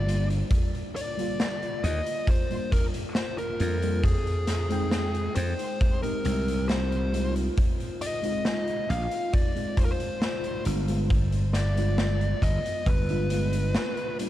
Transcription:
Already playing: G1 D5
0.06 G3 A#3 D4 F4, closed hi-hat
0.30 closed hi-hat
0.51 kick, closed hi-hat
0.75 closed hi-hat
0.96 D5, closed hi-hat
1.17 D3 G3 A#3 F4, closed hi-hat
1.40 snare, closed hi-hat
1.63 closed hi-hat
1.84 D#2 D#5, closed hi-hat
2.06 closed hi-hat
2.27 C5, kick, closed hi-hat
2.50 G3 A#3 D4 F4, closed hi-hat
2.72 A#4, kick, closed hi-hat
2.94 closed hi-hat
3.15 C5, snare, closed hi-hat
3.38 A#4, closed hi-hat
3.60 F2 G3 A#3 D4 F4, closed hi-hat
3.82 G3 A#3 D4 F4, closed hi-hat
4.04 G#4, kick, closed hi-hat
4.27 closed hi-hat
4.47 snare, closed hi-hat
4.69 G#3 C4 D#4 G5, closed hi-hat
4.91 snare, closed hi-hat
5.14 closed hi-hat
5.36 F2 C5, closed hi-hat
5.59 closed hi-hat
5.81 kick, closed hi-hat
6.03 G#3 C4 D#4 G4 A#4, closed hi-hat
6.24 C2 G#3 C4 D#4 G4, closed hi-hat
6.48 closed hi-hat
6.68 C5, snare, closed hi-hat
6.92 closed hi-hat
7.12 G#3 C4 D#4 F4, closed hi-hat
7.36 closed hi-hat
7.58 kick, closed hi-hat
7.80 closed hi-hat
8.01 D#5, closed hi-hat
8.22 G#3 C4 D#4 F4, closed hi-hat
8.45 snare, closed hi-hat
8.67 closed hi-hat
8.90 A#1 F5, closed hi-hat
9.11 closed hi-hat
9.33 D5, kick, closed hi-hat
9.55 G#3 C4 D#4 F4, closed hi-hat
9.77 C5, kick, closed hi-hat
9.85 A#4
9.92 C5
10.00 closed hi-hat
10.22 snare, closed hi-hat
10.44 closed hi-hat
10.65 G1 G#3 B3 D4 F4, closed hi-hat
10.88 G#3 B3 D4 F4, closed hi-hat
11.10 kick, closed hi-hat
11.32 closed hi-hat
11.53 D5, snare, closed hi-hat
11.75 D3 G#3 B3 F4, closed hi-hat
11.98 snare, closed hi-hat
12.21 closed hi-hat
12.42 G1 D#5, kick, closed hi-hat
12.66 closed hi-hat
12.86 G1 B4, kick, closed hi-hat
13.09 G#3 B3 D4 F4, closed hi-hat
13.30 G#3 B3 D4 F4, closed hi-hat
13.53 closed hi-hat
13.75 snare, closed hi-hat
13.97 closed hi-hat
14.19 G3 A#3 D4 F4, closed hi-hat

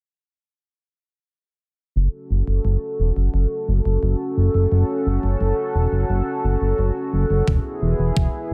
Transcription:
1.96 F#1 C#4 F#4 A4
2.30 F#1
2.48 F#1
2.65 F#1
2.99 E1
3.16 F#1
3.34 F#1
3.68 F#1
3.85 F#1
4.03 F#1
4.37 F#1
4.54 F#1
4.72 F#1
5.06 F#1
5.23 F#1
5.41 F#1
5.75 E1
5.92 F#1
6.10 F#1
6.44 F#1
6.61 F#1
6.78 F#1
7.13 F#1
7.30 F#1
7.48 E1 B3 E4 G#4, kick
7.82 E1
7.99 E1
8.16 E1, kick

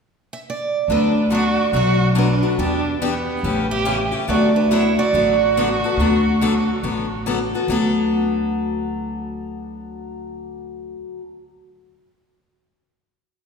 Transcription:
0.33 E5
0.50 D5
0.88 D2 D3 F#3 B3 D4 F#4 A4 B4
1.30 D3 F#3 B3 F#4 A4
1.35 D5
1.72 B1 B2 F#3 A3 D4 F#4
1.76 C#5
2.15 B2 F#3 A3 D4 F#4 B4
2.43 A3 D4 F#4
2.58 E2 E3 B3 D4 G4 A4
3.01 E3 B3 D4 G4
3.43 A1 C#3 E3 A3 C#4 G4
3.71 G4 E5
3.85 C#3 E3 A3 C#4 G4
4.12 A3 C#4 G4
4.28 D2 D3 F#3 B3 F#4 A4 D5
4.56 D4 B4
4.71 D3 F#3 B3 E4 F#4 A4 C#5
4.98 F#4 D5
5.13 A1 D3 F#3 B3 F#4 A4
5.57 D3 F#3 B3 F#4 A4
5.84 B3 F#4 A4
5.97 D2 D3 F#3 B3 F#4 A4
6.41 D3 F#3 B3 F#4 A4
6.83 A1 D3 F#3 B3 F#4 A4
7.26 D3 F#3 B3 F#4 A4
7.54 B3 F#4 A4
7.68 D2 D3 F#3 B3 F#4 A4

